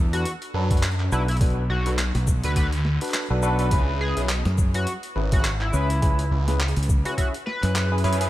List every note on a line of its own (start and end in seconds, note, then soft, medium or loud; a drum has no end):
0.00 0.23 E2 loud
0.13 0.24 D4 medium
0.13 0.31 F#4 loud
0.13 0.24 F#4 medium
0.13 0.24 A4 medium
0.13 0.24 B4 medium
0.13 closed hi-hat medium
0.25 closed hi-hat medium
0.42 closed hi-hat soft
0.54 1.10 F#2 loud
0.54 0.68 D4 medium
0.54 0.68 F#4 medium
0.54 0.68 A4 medium
0.54 0.68 B4 medium
0.71 0.82 D4 medium
0.71 0.82 F#4 medium
0.71 0.82 A4 medium
0.71 0.82 B4 medium
0.71 kick loud
0.71 closed hi-hat soft
0.77 closed hi-hat soft
0.83 clap loud
0.83 closed hi-hat medium
0.91 closed hi-hat soft
1.00 clap soft
1.12 1.68 B1 medium
1.12 1.26 D4 loud
1.12 1.23 E4 medium
1.12 1.26 F#4 medium
1.12 1.26 A4 loud
1.12 1.26 B4 loud
1.12 shaker medium
1.28 1.36 E4 medium
1.28 closed hi-hat soft
1.31 closed hi-hat soft
1.37 closed hi-hat soft
1.41 1.62 D4 medium
1.41 1.62 F#4 medium
1.41 1.62 A4 medium
1.41 1.62 B4 loud
1.41 kick loud
1.41 closed hi-hat medium
1.50 closed hi-hat soft
1.70 2.12 B1 loud
1.70 1.91 F#4 medium
1.86 1.97 D4 medium
1.86 1.97 F#4 medium
1.86 1.97 A4 medium
1.86 1.97 B4 medium
1.86 closed hi-hat soft
1.98 clap loud
1.98 closed hi-hat medium
2.15 2.41 B1 loud
2.15 snare medium
2.15 closed hi-hat soft
2.27 kick loud
2.27 shaker medium
2.44 2.99 D2 loud
2.44 2.54 D4 medium
2.44 2.54 F#4 medium
2.44 2.54 A4 medium
2.44 2.54 B4 loud
2.44 2.52 B4 medium
2.44 closed hi-hat medium
2.56 2.71 D4 medium
2.56 2.71 F#4 medium
2.56 2.71 A4 medium
2.56 2.67 B4 medium
2.56 2.71 D5 loud
2.56 kick medium
2.56 closed hi-hat medium
2.72 closed hi-hat soft
2.85 snare soft
3.01 3.26 D4 medium
3.01 3.26 F#4 medium
3.01 3.26 A4 medium
3.01 3.26 B4 medium
3.01 clap soft
3.01 closed hi-hat soft
3.04 clap soft
3.04 closed hi-hat soft
3.08 clap soft
3.08 closed hi-hat soft
3.11 clap loud
3.11 closed hi-hat soft
3.14 closed hi-hat medium
3.18 closed hi-hat soft
3.22 closed hi-hat soft
3.26 closed hi-hat soft
3.30 3.70 B1 medium
3.30 3.41 D4 medium
3.30 3.41 F#4 medium
3.30 3.41 A4 medium
3.30 3.41 B4 loud
3.43 3.57 D4 loud
3.43 3.57 F#4 medium
3.43 3.57 A4 medium
3.43 3.57 B4 loud
3.43 shaker medium
3.59 3.70 D4 medium
3.59 3.70 F#4 medium
3.59 3.70 A4 medium
3.59 3.70 B4 loud
3.59 closed hi-hat medium
3.71 4.14 C#2 loud
3.71 4.13 C#4 loud
3.71 4.13 E4 medium
3.71 4.13 G#4 medium
3.71 4.13 B4 loud
3.71 kick loud
3.71 closed hi-hat medium
4.01 4.21 G#4 loud
4.17 4.43 B1 medium
4.17 4.28 C#4 medium
4.17 4.28 E4 medium
4.17 4.28 G#4 medium
4.17 4.28 B4 medium
4.17 closed hi-hat soft
4.29 clap loud
4.29 closed hi-hat medium
4.45 4.85 F#2 loud
4.45 snare medium
4.45 closed hi-hat soft
4.58 kick loud
4.58 shaker medium
4.74 4.85 C#4 medium
4.74 4.85 E4 medium
4.74 4.93 F#4 loud
4.74 4.85 G#4 medium
4.74 4.85 B4 loud
4.74 closed hi-hat medium
4.87 closed hi-hat medium
5.03 closed hi-hat soft
5.16 5.71 G#1 loud
5.16 5.30 C#4 medium
5.16 5.30 E4 medium
5.16 5.30 G#4 medium
5.16 5.30 B4 medium
5.32 5.43 C#4 medium
5.32 5.43 E4 medium
5.32 5.51 F#4 medium
5.32 5.43 G#4 medium
5.32 5.43 B4 medium
5.32 kick loud
5.32 closed hi-hat medium
5.44 clap loud
5.44 closed hi-hat medium
5.61 6.41 E4 loud
5.61 clap soft
5.73 6.29 C#2 medium
5.73 5.88 C#4 loud
5.73 5.88 E4 loud
5.73 5.88 G#4 loud
5.73 5.88 B4 loud
5.73 shaker medium
5.90 closed hi-hat medium
6.02 6.24 C#4 medium
6.02 6.24 E4 medium
6.02 6.24 G#4 medium
6.02 6.24 B4 loud
6.02 kick loud
6.02 closed hi-hat medium
6.19 closed hi-hat soft
6.31 6.74 C#2 loud
6.48 6.58 C#4 medium
6.48 6.58 E4 medium
6.48 6.58 G#4 medium
6.48 6.58 B4 medium
6.48 snare soft
6.48 closed hi-hat medium
6.60 clap loud
6.60 closed hi-hat soft
6.68 closed hi-hat soft
6.76 7.03 C#2 loud
6.76 closed hi-hat soft
6.83 closed hi-hat medium
6.89 kick loud
6.89 shaker medium
7.05 7.16 C#4 medium
7.05 7.16 E4 medium
7.05 7.13 F#4 medium
7.05 7.16 G#4 medium
7.05 7.16 B4 loud
7.05 closed hi-hat medium
7.17 7.32 C#4 medium
7.17 7.32 E4 medium
7.17 7.28 F#4 medium
7.17 7.32 G#4 medium
7.17 7.32 E5 loud
7.17 kick medium
7.17 closed hi-hat medium
7.34 closed hi-hat soft
7.46 7.91 B4 loud
7.46 snare soft
7.63 8.02 F#2 loud
7.63 7.88 C#4 medium
7.63 7.88 E4 medium
7.63 7.88 G#4 medium
7.63 7.88 B4 medium
7.63 clap soft
7.63 closed hi-hat medium
7.75 clap loud
7.75 closed hi-hat medium
7.92 8.02 C#4 medium
7.92 8.02 E4 medium
7.92 8.02 G#4 medium
7.92 8.02 B4 loud
7.98 closed hi-hat soft
8.04 8.30 F#2 loud
8.04 8.18 C#4 loud
8.04 8.18 E4 medium
8.04 8.18 G#4 medium
8.04 8.18 B4 loud
8.04 closed hi-hat medium
8.13 closed hi-hat medium
8.21 8.30 C#4 medium
8.21 8.30 E4 medium
8.21 8.30 G#4 medium
8.21 8.30 B4 loud
8.21 closed hi-hat medium